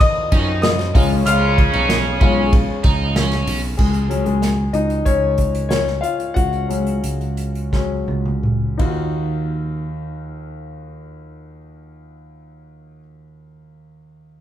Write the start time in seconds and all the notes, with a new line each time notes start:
Already playing: D#2 F#3 D#4 C#5 F5 C#6 F6
0.00 D#5 D#6, kick, ride
0.31 F#2 D#3 C#4 D#4, kick, ride
0.62 D#5 D#6, snare, ride
0.79 snare, ride
0.94 C#2 C#3 G#3 C#4 D#4 F4, kick, open hi-hat, ride
1.26 C#2 F4 F5 F6, hi-hat pedal, ride
1.58 kick, ride
1.73 B1 D#4, ride
1.89 snare, ride
2.21 B1 G#3 C#4 F4, kick, ride
2.53 kick, ride
2.84 C#2 D#4, kick, ride
3.16 C#4, snare, ride
3.31 snare, ride
3.47 B1, open hi-hat, ride
3.77 C#2 G#3 G#4, kick, crash
3.94 closed hi-hat
4.09 F#3 G#3 C#4, closed hi-hat
4.24 C#2 G#3 G#4, closed hi-hat
4.42 snare, closed hi-hat
4.73 C#2 D#4 D#5, closed hi-hat
4.90 closed hi-hat
5.05 C#2 C#4 C#5, kick, closed hi-hat
5.38 kick, closed hi-hat
5.55 closed hi-hat
5.69 C#4 C#5, snare, closed hi-hat
5.87 snare
6.01 F4 F5, closed hi-hat
6.20 closed hi-hat
6.34 C#2 F#4 F#5, kick, closed hi-hat
6.53 closed hi-hat
6.68 F#3 G#3 C#4, closed hi-hat
6.87 closed hi-hat
7.04 C#2, closed hi-hat
7.21 closed hi-hat
7.37 closed hi-hat
7.55 closed hi-hat
7.72 F#3 G#3 C#4, kick, snare
8.08 C#2, high tom
8.26 high tom
8.43 mid tom
8.78 D#2 D#4 F4 F#4, kick, ride